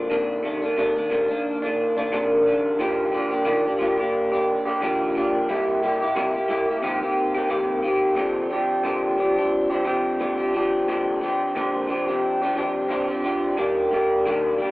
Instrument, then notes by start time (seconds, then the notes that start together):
clean electric guitar
Already playing: A#3 D4
0.10 C3 D#3 A#3 D4
0.43 C3 D#3 A#3 D4
0.62 D#3 A#3 D4
0.77 C3 D#3 A#3 D4
0.95 D#3 A#3 D4
1.10 C3 D#3 A#3 D4
1.28 D#3 A#3 D4
1.62 D#3 A#3 D4
1.97 D#3 A#3 D4
2.12 C3 D#3 A#3 D4
2.45 C3 D#3 A#3 D4
2.79 D#3 F3 A#3 D4 G4
3.12 F3 A#3 D4 G4
3.29 A#3 D4 G4
3.45 D#3 F3 A#3 D4 G4
3.64 A#3 D4 G4
3.79 F3 A#3 D4 G4
3.98 A#3 D4 G4
4.32 A#3 D4 G4
4.65 A#3 D4 G4
4.81 D#3 F3 A#3 D4 G4
5.15 F3 A#3 D4 G4
5.49 C3 G3 A#3 E4 G4
5.83 G3 A#3 E4 G4
6.00 A#3 E4 G4
6.15 C3 G3 A#3 E4 G4
6.33 A#3 E4 G4
6.48 G3 A#3 E4 G4
6.68 A#3 E4 G4
6.82 F2 C3 D#3 A#3 C4 G4
7.01 D#3 A#3 C4 G4
7.35 D#3 A#3 C4 G4
7.49 F2 C3 D#3 A#3 C4 G4
7.82 D#3 A#3 C4 G4
8.15 A#2 D3 F3 C4 D4 G4
8.50 F3 C4 D4 G4
8.84 A#2 D3 F3 C4 D4 G4
9.18 F3 C4 D4 G4
9.36 F3 C4 D4 G4
9.70 F3 C4 D4 G4
9.84 F3 C4 D4 G4
10.20 A#2 D3 F3 C4 D4 G4
10.38 F3 C4 D4 G4
10.54 F3 C4 D4 G4
10.88 A#2 D3 F3 C4 D4 G4
11.21 F3 C4 D4 G4
11.55 A#2 D3 F3 C4 D4 G4
11.87 F3 C4 D4 G4
12.07 F3 C4 D4 G4
12.42 F3 C4 D4 G4
12.55 F3 C4 D4 G4
12.88 A#2 D3 F3 C4 D4 G4
13.07 F3 C4 D4 G4
13.24 F3 C4 D4 G4
13.57 D#3 G3 A#3 D4 G4
13.91 G3 A#3 D4 G4
14.25 D#3 G3 A#3 D4 G4
14.58 G3 A#3 D4 G4